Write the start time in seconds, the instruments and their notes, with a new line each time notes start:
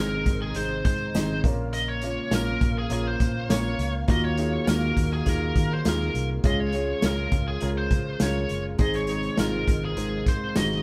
Already playing: fingered electric bass G#1, felt piano G#2 C4 D#4 G#4 A#4 C5, string section C3 D#3 G#3 D#4, lead electric guitar A#4
0.26 fingered electric bass G#1, kick, closed hi-hat
0.42 lead electric guitar G#4
0.55 fingered electric bass G#1, felt piano C4 D#4 G#4 C5, lead electric guitar C5, closed hi-hat
0.85 fingered electric bass G#2, lead electric guitar C5, kick, closed hi-hat
1.14 fingered electric bass G#1, felt piano C4 D#4 G#4 D#5, snare, closed hi-hat, tambourine
1.43 fingered electric bass A#1, felt piano A#2 A#3 C#4 F4 A#4, string section C#3 F3 A#3 F5, kick, closed hi-hat
1.73 lead electric guitar D#5, closed hi-hat
1.89 lead electric guitar C#5
2.02 felt piano A#3 C#4 F4 A#4, closed hi-hat
2.31 fingered electric bass A#1, felt piano A#3 C#4 F4 A#4, lead electric guitar A#4, snare, closed hi-hat, tambourine
2.61 fingered electric bass A#1, kick, closed hi-hat
2.78 lead electric guitar G#4
2.90 fingered electric bass A#1, felt piano A#3 C#4 F4 A#4, lead electric guitar G#4, closed hi-hat
3.07 lead electric guitar C5
3.20 fingered electric bass A#2, kick, closed hi-hat
3.49 fingered electric bass A#1, felt piano A#3 C#4 F4 C#5, lead electric guitar C#5, snare, closed hi-hat, tambourine
3.78 fingered electric bass C#2, closed hi-hat
4.08 fingered electric bass D#2, felt piano D#3 A#3 D#4 F4 F#4, string section D#3 F#3, lead electric guitar D#5, kick, closed hi-hat
4.25 lead electric guitar C#5
4.37 felt piano A#3 D#4 F4 G#4, closed hi-hat
4.67 fingered electric bass D#2, felt piano A#3 D#4 F4 F#4, lead electric guitar A#4, snare, closed hi-hat, tambourine
4.97 fingered electric bass D#2, kick, closed hi-hat
5.13 lead electric guitar G#4
5.26 fingered electric bass D#2, felt piano A#3 D#4 F4 G#4, lead electric guitar A#4, kick, closed hi-hat
5.56 fingered electric bass D#3, kick, closed hi-hat
5.73 lead electric guitar C5
5.85 fingered electric bass D#2, felt piano A#3 D#4 F4 G#4, lead electric guitar A#4, snare, closed hi-hat, tambourine
6.00 snare
6.14 fingered electric bass C2, closed hi-hat
6.44 fingered electric bass C#2, felt piano C#3 G#3 C#4 F4 G#4, string section C#3 F3 G#3 F4, lead electric guitar D#5, kick, closed hi-hat
6.60 lead electric guitar C#5
6.72 felt piano G#3 C#4 F4 G#4, closed hi-hat
7.02 fingered electric bass C#2, felt piano G#3 C#4 F4 G#4, lead electric guitar A#4, snare, closed hi-hat, tambourine
7.32 fingered electric bass C#2, kick, closed hi-hat
7.48 lead electric guitar G#4
7.61 fingered electric bass C#2, felt piano G#3 C#4 F4 A#4, lead electric guitar G#4, closed hi-hat
7.78 lead electric guitar C5
7.91 fingered electric bass C#3, kick, closed hi-hat
8.20 fingered electric bass C#2, felt piano G#3 C#4 F4 A#4, lead electric guitar C#5, snare, closed hi-hat, tambourine
8.49 fingered electric bass F#1, closed hi-hat
8.79 fingered electric bass G#1, felt piano G#2 G#3 C4 D#4 G#4, string section C3 D#3 G#3 D#4, lead electric guitar D#5, kick, closed hi-hat
8.94 lead electric guitar C#5, closed hi-hat
9.07 felt piano G#3 C4 D#4 G#4, closed hi-hat
9.23 closed hi-hat
9.37 fingered electric bass G#1, felt piano G#3 C4 D#4 F4, lead electric guitar A#4, snare, closed hi-hat, tambourine
9.68 fingered electric bass G#1, kick, closed hi-hat
9.85 lead electric guitar G#4
9.96 fingered electric bass G#1, felt piano G#3 C4 D#4 A#4, closed hi-hat
10.26 fingered electric bass G#2, lead electric guitar C5, kick, closed hi-hat
10.55 fingered electric bass G#1, felt piano G#3 C4 D#4 F#4, lead electric guitar D#5, snare, closed hi-hat, tambourine
10.72 snare